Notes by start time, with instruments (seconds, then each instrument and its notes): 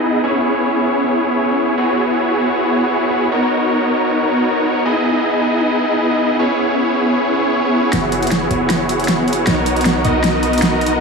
Already playing: supersaw synth B3 D#4 E4 G#4 D#5
0.24 supersaw synth B3 C#4 E4 G#4 C#5
1.77 supersaw synth B3 E4 F#4 G#4 C#5
3.31 supersaw synth B3 D#4 F#4 A#4 C#5
4.85 supersaw synth B3 D#4 E4 G#4 D#5
6.39 supersaw synth B3 C#4 E4 G#4 C#5
7.93 808-style bass F#1, supersaw synth B3 E4 F#4 C#5, snare, closed hi-hat
8.12 closed hi-hat
8.22 closed hi-hat
8.27 closed hi-hat
8.31 snare, closed hi-hat
8.51 808-style bass F#1, supersaw synth B3 E4 F#4 G#4 C#5, closed hi-hat
8.70 snare, closed hi-hat
8.89 closed hi-hat
9.00 closed hi-hat
9.04 closed hi-hat
9.08 snare, closed hi-hat
9.28 closed hi-hat
9.33 closed hi-hat
9.47 808-style bass B1, supersaw synth B3 D#4 F#4 A#4 C#5, snare, closed hi-hat
9.66 closed hi-hat
9.76 closed hi-hat
9.81 closed hi-hat
9.85 snare, closed hi-hat
10.04 808-style bass B1, supersaw synth B3 D#4 F#4 A#4 D#5, closed hi-hat
10.24 snare, closed hi-hat
10.43 closed hi-hat
10.53 closed hi-hat
10.58 closed hi-hat
10.62 snare, closed hi-hat
10.81 closed hi-hat
10.86 closed hi-hat